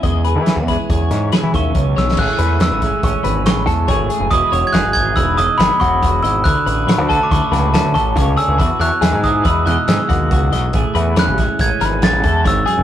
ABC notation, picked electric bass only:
X:1
M:5/4
L:1/16
Q:1/4=140
K:E
V:1 name="Picked electric bass" clef=bass
E,,3 E,2 E,,2 z E,,2 G,,2 z E, D,,2 C,,2 B,,,2 | A,,, z E,,2 E,, A,,,2 z A,,, z G,,,2 A,,, A,,, E,,2 G,,,2 z F,,, | E,,, z E,,, z E,,, G,,,3 E,,,2 E,,, z G,,, z E,,,4 G,,,2 | =D,, z A,,,2 A,,, D,,2 z D,, z C,,2 D,, D,, A,,,2 C,,2 z C,, |
E,, z E,, z E,, G,,3 E,,2 E,, z G,, z D,,2 C,,2 B,,,2 | A,,, z E,,2 E,, A,,,2 z A,,, z G,,,2 A,,, A,,, E,,2 G,,,2 z F,,, |]